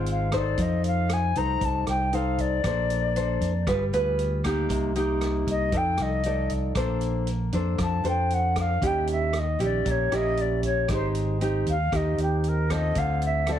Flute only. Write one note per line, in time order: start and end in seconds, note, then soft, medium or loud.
0.11 0.32 F5 medium
0.36 0.63 D5 medium
0.61 0.85 D#5 medium
0.87 1.14 F5 medium
1.13 1.38 G#5 medium
1.37 1.66 A#5 loud
1.65 1.88 A5 medium
1.88 2.16 G5 medium
2.14 2.42 F5 medium
2.40 3.68 D5 medium
5.50 5.78 D#5 medium
5.77 6.03 G5 medium
6.02 6.52 D#5 medium
7.82 8.05 A5 medium
8.08 8.35 G5 medium
8.33 8.58 F#5 medium
8.59 8.88 F5 medium
8.86 9.10 G5 medium
9.11 9.40 E5 medium
9.39 9.62 D#5 medium
9.64 9.92 D5 medium
9.90 10.16 C#5 medium
10.14 10.42 D#5 medium
10.41 10.64 D5 medium
10.65 10.88 C#5 medium
10.93 11.08 C5 medium
11.70 11.97 F5 medium
11.96 12.20 D#5 medium
12.22 12.49 G4 soft
12.48 12.73 A#4 medium
12.72 12.99 D#5 medium
12.98 13.22 F5 medium
13.25 13.53 E5 medium
13.51 13.59 D5 medium